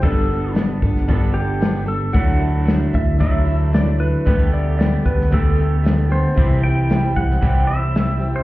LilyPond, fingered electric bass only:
\new Staff \with { instrumentName = "Fingered electric bass" } { \clef bass \time 4/4 \key g \major \tempo 4 = 114 g,,4. g,,8 g,,2 | d,4. d,8 d,2 | d,4. d,8 d,2 | c,4. c,8 c,2 | }